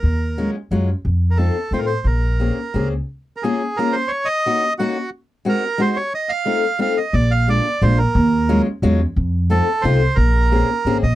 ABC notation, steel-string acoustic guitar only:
X:1
M:3/4
L:1/8
Q:1/4=178
K:Bbm
V:1 name="Steel-string acoustic guitar"
z2 [G,A,DF] z [G,A,DF] z | z2 [=A,CEF] z [A,CEF] z | z2 [B,CDA] z [B,CDA] z | z2 [B,DFA] z [B,DFA] z |
z2 [B,DEG] z [B,DEG] z | z2 [A,CEG] z [A,CEG] z | z2 [=A,CEF] z [A,CEF] z | z2 [A,B,=DF] z [A,B,DF] z |
z2 [G,A,DF] z [G,A,DF] z | z2 [=A,CEF] z [A,CEF] z | z2 [B,CDA] z [B,CDA] z |]